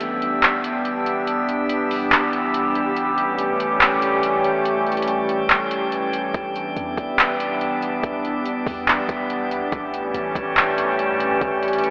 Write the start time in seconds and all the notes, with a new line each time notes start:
Already playing: E3 G3 B3 D4 G4 E5, impact
0.01 closed hi-hat
0.22 closed hi-hat
0.43 clap, closed hi-hat
0.64 closed hi-hat
0.85 closed hi-hat
1.06 closed hi-hat
1.27 closed hi-hat
1.49 closed hi-hat
1.69 closed hi-hat
1.91 open hi-hat
2.12 clap, closed hi-hat
2.33 closed hi-hat
2.54 closed hi-hat
2.75 closed hi-hat
2.96 A3 C#4 A4 G5, closed hi-hat
3.18 closed hi-hat
3.39 closed hi-hat
3.60 closed hi-hat
3.81 clap, closed hi-hat
4.02 closed hi-hat
4.23 closed hi-hat
4.44 closed hi-hat
4.65 closed hi-hat
4.87 closed hi-hat
4.92 closed hi-hat
4.97 closed hi-hat
5.02 closed hi-hat
5.08 closed hi-hat
5.29 closed hi-hat
5.50 clap, closed hi-hat
5.71 closed hi-hat
5.92 closed hi-hat
6.13 closed hi-hat
6.34 E1 B3 D4 E4 D5, kick, closed hi-hat
6.56 closed hi-hat
6.77 E2, closed hi-hat
6.97 E1, kick, closed hi-hat
7.19 clap, closed hi-hat
7.40 closed hi-hat
7.61 closed hi-hat
7.82 closed hi-hat
8.03 E1, kick, closed hi-hat
8.25 closed hi-hat
8.46 closed hi-hat
8.66 E2, kick, open hi-hat
8.88 clap, closed hi-hat
8.98 G1
9.09 E1, kick, closed hi-hat
9.30 closed hi-hat
9.51 E2, closed hi-hat
9.62 E1
9.72 A1 E3 G3 A3 C#4 G4 C#5 A5, kick, closed hi-hat
9.94 closed hi-hat
10.14 A1, closed hi-hat
10.35 A1, kick, closed hi-hat
10.57 clap, closed hi-hat
10.78 closed hi-hat
10.99 closed hi-hat
11.10 A2
11.20 closed hi-hat
11.41 A1, kick, closed hi-hat
11.63 closed hi-hat
11.68 closed hi-hat
11.73 closed hi-hat
11.78 closed hi-hat
11.84 closed hi-hat